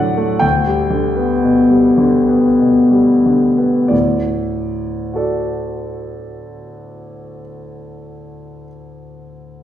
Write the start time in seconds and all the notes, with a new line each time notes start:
Already playing: D2 A2 D3 F#3 A3 D5 E5 F#5
0.17 A3
0.39 D2 G5
0.66 G3
0.90 D3
1.17 B3
1.43 B2
1.70 G3
1.98 D3
2.29 B3
2.59 B2
2.91 G3
3.26 D3
3.58 B3
3.88 D2 A2 D5
5.14 F#4 A4 D5